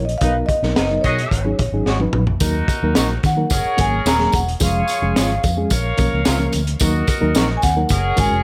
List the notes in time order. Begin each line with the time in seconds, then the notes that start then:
Already playing: A#1
0.05 D#5, closed hi-hat
0.18 B1 D#4 B4 D#5 F5, kick, closed hi-hat
0.23 F#3 B3 D#4 A#4
0.46 D#5, kick, closed hi-hat
0.63 B1 F#3 B3 D#4 A#4, snare
0.76 F#1 B3 D#4 A#4, snare, closed hi-hat
0.90 F#3 B3 D#4 A#4
1.01 B2 F#4 G#4 C#5 D#5, kick, closed hi-hat
1.18 closed hi-hat
1.31 G#1, kick, closed hi-hat
1.45 F#3 C#4 D#4 G#4
1.59 A#1, kick, closed hi-hat
1.72 G#1 F#3 C#4 D#4 G#4
1.86 G#1 G#3 C#4 F#4, snare
2.00 F#3 C#4 D#4 B4, high tom
2.13 A#1, mid tom
2.27 floor tom
2.40 D#2 F#3 A#3 D#4 F#4 A#4, kick, closed hi-hat, tambourine
2.68 kick, closed hi-hat, tambourine
2.83 D#2 F#3 A#3 D#4 A#4
2.95 A#1 D#4 F#4 A#4, snare, closed hi-hat, tambourine
3.23 D#3 F#5, kick, snare, closed hi-hat, tambourine
3.37 F#3 A#3 D#4 A#4
3.50 F#1 G#4 A#4 C#5, kick, closed hi-hat, tambourine
3.65 muted fingered electric bass stroke
3.77 G#1 F#3 A#3 C#4 G#4 G#5, kick, closed hi-hat, tambourine
4.06 D#1 C#4 G#4 A#4 A#5, snare, closed hi-hat, tambourine
4.18 F#3 A#3 C#4 G#4, snare
4.32 E1 F#5, kick, closed hi-hat, tambourine
4.48 closed hi-hat
4.60 F1 F3 G#3 C#4 F4 G#4 C#5 F5, kick, closed hi-hat, tambourine
4.88 closed hi-hat, tambourine
5.02 F1 F3 G#3 C#4 G#4
5.16 G#1 G#3 C#4 F4, snare, closed hi-hat, tambourine
5.44 F2, kick, closed hi-hat, tambourine
5.57 F3 G#3 C#4 G#4
5.70 A#1 A#4 C#5 F5, kick, closed hi-hat, tambourine
5.98 B1 F3 A#3 C#4 A#4, kick, closed hi-hat, tambourine
6.13 C#2
6.25 C#2 C#4 F4 A#4, snare, closed hi-hat, tambourine
6.38 F3 A#3 C#4 A#4
6.52 D2, closed hi-hat, tambourine
6.67 closed hi-hat
6.80 D#2 F#3 A#3 D#4 F#4 A#4 D#5, kick, closed hi-hat, tambourine
7.07 kick, closed hi-hat, tambourine
7.21 D#2 F#3 A#3 D#4 A#4
7.35 A#1 D#4 F#4 A#4, snare, closed hi-hat, tambourine
7.57 G#5
7.62 D#2 F#5, kick, snare, closed hi-hat, tambourine
7.76 F#3 A#3 D#4 A#4
7.89 F#1 G#4 A#4 C#5, kick, closed hi-hat, tambourine
8.16 G#1 G#3 C#4 F#4 A#4 G#5, kick, closed hi-hat, tambourine
8.31 F1